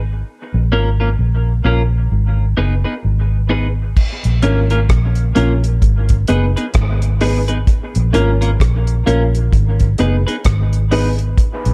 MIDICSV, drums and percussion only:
0, 0, Header, 1, 2, 480
1, 0, Start_track
1, 0, Tempo, 925926
1, 133, Time_signature, 4, 2, 24, 8
1, 6085, End_track
2, 0, Start_track
2, 0, Title_t, "Drums"
2, 2056, Note_on_c, 9, 36, 110
2, 2056, Note_on_c, 9, 49, 86
2, 2108, Note_off_c, 9, 36, 0
2, 2108, Note_off_c, 9, 49, 0
2, 2198, Note_on_c, 9, 42, 53
2, 2250, Note_off_c, 9, 42, 0
2, 2294, Note_on_c, 9, 42, 79
2, 2345, Note_off_c, 9, 42, 0
2, 2437, Note_on_c, 9, 42, 50
2, 2489, Note_off_c, 9, 42, 0
2, 2536, Note_on_c, 9, 36, 98
2, 2537, Note_on_c, 9, 42, 84
2, 2539, Note_on_c, 9, 37, 107
2, 2588, Note_off_c, 9, 36, 0
2, 2589, Note_off_c, 9, 42, 0
2, 2591, Note_off_c, 9, 37, 0
2, 2672, Note_on_c, 9, 42, 54
2, 2724, Note_off_c, 9, 42, 0
2, 2777, Note_on_c, 9, 42, 85
2, 2829, Note_off_c, 9, 42, 0
2, 2922, Note_on_c, 9, 42, 52
2, 2974, Note_off_c, 9, 42, 0
2, 3017, Note_on_c, 9, 36, 94
2, 3018, Note_on_c, 9, 42, 80
2, 3068, Note_off_c, 9, 36, 0
2, 3069, Note_off_c, 9, 42, 0
2, 3156, Note_on_c, 9, 42, 57
2, 3163, Note_on_c, 9, 36, 97
2, 3207, Note_off_c, 9, 42, 0
2, 3215, Note_off_c, 9, 36, 0
2, 3253, Note_on_c, 9, 42, 70
2, 3305, Note_off_c, 9, 42, 0
2, 3406, Note_on_c, 9, 42, 57
2, 3458, Note_off_c, 9, 42, 0
2, 3493, Note_on_c, 9, 42, 85
2, 3498, Note_on_c, 9, 36, 116
2, 3500, Note_on_c, 9, 37, 116
2, 3544, Note_off_c, 9, 42, 0
2, 3550, Note_off_c, 9, 36, 0
2, 3551, Note_off_c, 9, 37, 0
2, 3639, Note_on_c, 9, 42, 50
2, 3691, Note_off_c, 9, 42, 0
2, 3736, Note_on_c, 9, 46, 77
2, 3787, Note_off_c, 9, 46, 0
2, 3879, Note_on_c, 9, 42, 57
2, 3930, Note_off_c, 9, 42, 0
2, 3978, Note_on_c, 9, 36, 110
2, 3978, Note_on_c, 9, 42, 79
2, 4029, Note_off_c, 9, 36, 0
2, 4030, Note_off_c, 9, 42, 0
2, 4121, Note_on_c, 9, 42, 54
2, 4173, Note_off_c, 9, 42, 0
2, 4220, Note_on_c, 9, 42, 83
2, 4272, Note_off_c, 9, 42, 0
2, 4364, Note_on_c, 9, 42, 52
2, 4416, Note_off_c, 9, 42, 0
2, 4459, Note_on_c, 9, 36, 101
2, 4464, Note_on_c, 9, 42, 89
2, 4465, Note_on_c, 9, 37, 113
2, 4511, Note_off_c, 9, 36, 0
2, 4516, Note_off_c, 9, 42, 0
2, 4517, Note_off_c, 9, 37, 0
2, 4599, Note_on_c, 9, 42, 54
2, 4651, Note_off_c, 9, 42, 0
2, 4703, Note_on_c, 9, 42, 83
2, 4755, Note_off_c, 9, 42, 0
2, 4846, Note_on_c, 9, 42, 51
2, 4897, Note_off_c, 9, 42, 0
2, 4938, Note_on_c, 9, 36, 97
2, 4942, Note_on_c, 9, 42, 85
2, 4990, Note_off_c, 9, 36, 0
2, 4994, Note_off_c, 9, 42, 0
2, 5078, Note_on_c, 9, 42, 51
2, 5084, Note_on_c, 9, 36, 91
2, 5130, Note_off_c, 9, 42, 0
2, 5136, Note_off_c, 9, 36, 0
2, 5175, Note_on_c, 9, 42, 73
2, 5226, Note_off_c, 9, 42, 0
2, 5329, Note_on_c, 9, 42, 55
2, 5381, Note_off_c, 9, 42, 0
2, 5415, Note_on_c, 9, 42, 94
2, 5419, Note_on_c, 9, 36, 119
2, 5422, Note_on_c, 9, 37, 120
2, 5467, Note_off_c, 9, 42, 0
2, 5471, Note_off_c, 9, 36, 0
2, 5474, Note_off_c, 9, 37, 0
2, 5562, Note_on_c, 9, 42, 46
2, 5613, Note_off_c, 9, 42, 0
2, 5659, Note_on_c, 9, 46, 80
2, 5711, Note_off_c, 9, 46, 0
2, 5799, Note_on_c, 9, 42, 57
2, 5851, Note_off_c, 9, 42, 0
2, 5897, Note_on_c, 9, 36, 111
2, 5899, Note_on_c, 9, 42, 79
2, 5949, Note_off_c, 9, 36, 0
2, 5951, Note_off_c, 9, 42, 0
2, 6042, Note_on_c, 9, 42, 51
2, 6085, Note_off_c, 9, 42, 0
2, 6085, End_track
0, 0, End_of_file